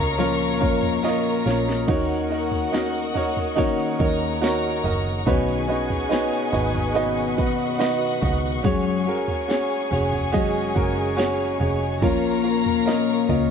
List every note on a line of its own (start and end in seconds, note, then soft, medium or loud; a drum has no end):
0.00 0.62 C#2 medium
0.00 1.91 A#2 medium
0.00 0.19 A#3 soft
0.00 0.17 C#4 loud
0.00 0.20 C#4 soft
0.00 0.18 F4 medium
0.00 0.20 F4 soft
0.00 0.19 A#4 medium
0.00 0.22 A#4 medium
0.00 1.84 A#4 medium
0.00 5.23 A#4 medium
0.00 0.19 C#5 loud
0.00 1.85 C#5 medium
0.00 1.05 D#5 loud
0.00 1.86 F5 medium
0.00 1.84 A#5 loud
0.00 1.86 C#6 loud
0.17 1.88 A#2 medium
0.17 1.87 F3 medium
0.17 1.88 A#3 medium
0.17 0.58 C#4 loud
0.17 1.89 C#4 medium
0.17 0.59 F4 medium
0.17 0.59 A#4 medium
0.17 0.60 C#5 loud
0.21 1.89 F4 loud
0.21 1.90 A#4 medium
0.21 tambourine soft
0.41 tambourine soft
0.60 1.43 F2 medium
0.60 1.01 C#4 medium
0.60 1.01 F4 medium
0.60 1.02 A#4 medium
0.60 1.02 C#5 medium
0.60 kick medium
0.83 floor tom medium
1.03 1.44 C#4 loud
1.03 1.44 F4 medium
1.03 1.44 A#4 medium
1.03 1.45 D#5 loud
1.03 snare medium
1.03 tambourine medium
1.26 tambourine soft
1.45 1.86 A#1 medium
1.45 1.86 C#4 medium
1.45 1.86 F4 medium
1.45 1.87 A#4 medium
1.45 1.87 C#5 medium
1.45 snare medium
1.45 tambourine soft
1.69 snare medium
1.87 3.96 D#2 medium
1.87 2.77 D#3 medium
1.87 3.12 D#3 medium
1.87 2.71 A#3 medium
1.87 2.74 C#4 medium
1.87 2.28 D#4 loud
1.87 2.73 D#4 medium
1.87 3.96 F#4 medium
1.87 2.29 F#4 medium
1.87 2.75 F#4 medium
1.87 2.29 A#4 medium
1.87 2.30 C#5 loud
1.87 5.23 D#5 medium
1.87 3.96 F#5 medium
1.87 11.99 F#5 medium
1.87 13.51 C#6 medium
1.87 kick loud
1.87 floor tom loud
1.87 crash medium
1.87 tambourine soft
2.11 tambourine soft
2.30 2.71 D#4 medium
2.30 2.71 F#4 medium
2.30 2.71 A#4 medium
2.30 2.72 D#5 medium
2.52 floor tom medium
2.52 tambourine soft
2.72 3.56 A#3 medium
2.72 3.59 C#4 medium
2.72 3.13 D#4 medium
2.72 3.58 D#4 medium
2.72 3.13 F#4 medium
2.72 3.61 F#4 medium
2.72 3.14 A#4 medium
2.72 3.14 D#5 loud
2.72 snare loud
2.72 tambourine medium
2.95 tambourine soft
3.14 3.54 D#4 medium
3.14 3.55 F#4 medium
3.14 3.55 A#4 medium
3.14 3.56 C#5 loud
3.14 floor tom medium
3.14 tambourine soft
3.37 floor tom medium
3.37 tambourine soft
3.56 5.26 D#3 medium
3.56 5.26 A#3 medium
3.56 3.97 D#4 loud
3.56 5.27 D#4 medium
3.56 3.97 F#4 loud
3.56 3.98 A#4 medium
3.56 3.98 C#5 loud
3.56 kick medium
3.56 tambourine soft
3.60 5.27 C#4 medium
3.60 5.28 F#4 medium
3.79 tambourine soft
3.99 4.81 D#2 medium
3.99 4.40 D#4 medium
3.99 4.40 F#4 medium
3.99 5.24 A#4 medium
3.99 4.40 A#4 medium
3.99 4.41 C#5 medium
3.99 5.24 A#5 medium
3.99 kick medium
4.41 4.82 D#4 loud
4.41 4.82 F#4 loud
4.41 4.83 A#4 loud
4.41 4.83 C#5 loud
4.41 snare loud
4.41 tambourine medium
4.83 5.24 F#1 medium
4.83 5.24 D#4 medium
4.83 5.24 F#4 medium
4.83 5.25 A#4 medium
4.83 5.25 D#5 medium
4.83 floor tom medium
4.83 tambourine soft
5.26 6.29 B1 loud
5.26 5.69 B2 medium
5.26 6.50 B2 medium
5.26 5.69 D#3 medium
5.26 5.69 B3 medium
5.26 5.68 C#4 medium
5.26 5.66 D#4 loud
5.26 5.69 D#4 medium
5.26 5.67 F#4 medium
5.26 5.66 F#4 medium
5.26 7.34 G#4 medium
5.26 8.61 B4 medium
5.26 5.67 B4 medium
5.26 5.68 C#5 loud
5.26 8.61 D#5 medium
5.26 7.34 G#5 loud
5.26 kick loud
5.26 floor tom loud
5.26 tambourine soft
5.49 tambourine soft
5.68 6.09 B3 soft
5.68 6.11 C#4 soft
5.68 6.08 D#4 medium
5.68 6.10 D#4 soft
5.68 6.11 F#4 medium
5.68 6.09 F#4 medium
5.68 6.09 B4 medium
5.68 6.10 D#5 medium
5.90 floor tom medium
5.90 tambourine soft
6.09 6.95 B3 medium
6.09 6.97 C#4 medium
6.09 6.50 D#4 medium
6.09 6.96 D#4 medium
6.09 6.51 F#4 medium
6.09 6.99 F#4 medium
6.09 6.51 B4 medium
6.09 6.52 C#5 loud
6.09 snare loud
6.09 tambourine medium
6.33 tambourine soft
6.52 7.39 G#1 loud
6.52 6.93 D#4 medium
6.52 6.93 F#4 medium
6.52 6.94 B4 medium
6.52 6.94 D#5 medium
6.52 floor tom medium
6.52 tambourine medium
6.75 floor tom medium
6.75 tambourine soft
6.94 8.63 B2 medium
6.94 8.64 D#3 medium
6.94 8.65 B3 medium
6.94 7.35 D#4 loud
6.94 8.65 D#4 medium
6.94 7.36 F#4 loud
6.94 7.36 B4 loud
6.94 7.36 D#5 loud
6.94 tambourine soft
6.98 8.65 C#4 medium
6.98 8.66 F#4 medium
7.17 tambourine soft
7.37 8.19 F#1 medium
7.37 7.77 D#4 medium
7.37 7.78 F#4 medium
7.37 8.63 F#4 medium
7.37 7.78 B4 medium
7.37 7.79 D#5 medium
7.37 8.63 F#5 medium
7.37 kick medium
7.79 8.20 D#4 loud
7.79 8.20 F#4 medium
7.79 8.20 B4 loud
7.79 8.21 D#5 loud
7.79 snare loud
7.79 tambourine medium
8.21 8.65 C#2 medium
8.21 8.62 D#4 medium
8.21 8.62 F#4 medium
8.21 8.63 B4 medium
8.21 8.63 D#5 medium
8.21 kick medium
8.21 floor tom medium
8.21 tambourine soft
8.63 9.67 F#1 loud
8.63 9.07 F#2 medium
8.63 9.07 F#3 medium
8.63 9.07 G#3 medium
8.63 9.04 C#4 loud
8.63 9.07 C#4 medium
8.63 9.04 F#4 medium
8.63 9.05 F#4 medium
8.63 9.05 G#4 loud
8.63 12.00 G#4 medium
8.63 11.99 G#4 medium
8.63 9.06 G#4 medium
8.63 13.51 C#5 medium
8.63 9.05 C#5 loud
8.63 11.99 G#5 loud
8.63 kick loud
8.63 floor tom loud
8.63 tambourine soft
9.06 10.34 G#3 soft
9.06 9.46 C#4 medium
9.06 10.35 C#4 soft
9.06 10.33 F#4 medium
9.06 9.47 F#4 medium
9.06 10.34 G#4 medium
9.06 9.48 G#4 medium
9.06 9.48 A#4 medium
9.28 floor tom medium
9.48 9.89 C#4 medium
9.48 9.89 F#4 medium
9.48 9.89 G#4 medium
9.48 9.90 C#5 loud
9.48 snare loud
9.48 tambourine medium
9.71 tambourine soft
9.90 10.72 F1 medium
9.90 10.30 C#4 medium
9.90 10.31 F#4 medium
9.90 10.32 G#4 medium
9.90 10.32 C#5 medium
9.90 floor tom medium
9.90 tambourine soft
10.13 floor tom medium
10.13 tambourine soft
10.32 12.02 F#3 medium
10.32 12.03 G#3 medium
10.32 10.73 C#4 loud
10.32 12.04 C#4 medium
10.32 10.73 F#4 loud
10.32 10.74 G#4 loud
10.32 10.74 D#5 loud
10.32 kick loud
10.32 tambourine soft
10.37 12.05 F#4 medium
10.37 12.04 G#4 medium
10.54 tambourine soft
10.74 11.57 F#1 medium
10.74 11.15 C#4 medium
10.74 11.15 F#4 medium
10.74 11.16 G#4 medium
10.74 11.16 A#4 loud
10.74 kick medium
11.16 11.57 C#4 loud
11.16 11.58 F#4 loud
11.16 11.58 G#4 loud
11.16 11.58 C#5 loud
11.16 snare loud
11.16 tambourine medium
11.40 tambourine soft
11.59 12.03 F1 loud
11.59 12.00 C#4 medium
11.59 12.00 F#4 medium
11.59 12.01 G#4 medium
11.59 12.01 C#5 medium
11.59 floor tom medium
11.59 tambourine soft
12.01 13.04 A#1 loud
12.01 13.51 A#2 medium
12.01 13.25 A#2 medium
12.01 13.51 F3 medium
12.01 13.51 A#3 medium
12.01 12.41 C#4 loud
12.01 13.51 C#4 medium
12.01 12.42 F4 loud
12.01 13.51 A#4 medium
12.01 12.43 A#4 medium
12.01 13.51 A#4 medium
12.01 12.43 C#5 loud
12.01 13.51 F5 medium
12.01 13.51 A#5 loud
12.01 kick loud
12.01 floor tom loud
12.01 tambourine soft
12.06 13.51 F4 medium
12.06 13.51 A#4 medium
12.43 12.84 C#4 medium
12.43 12.84 F4 medium
12.43 12.85 A#4 medium
12.43 12.85 C#5 medium
12.66 floor tom medium
12.85 13.26 C#4 medium
12.85 13.27 F4 medium
12.85 13.27 A#4 medium
12.85 13.28 D#5 loud
12.85 snare loud
12.85 tambourine medium
13.08 tambourine soft
13.27 13.51 C#2 medium
13.27 13.51 C#4 medium
13.27 13.51 F4 medium
13.27 13.51 A#4 medium
13.27 13.51 D#5 medium
13.27 floor tom medium
13.27 tambourine soft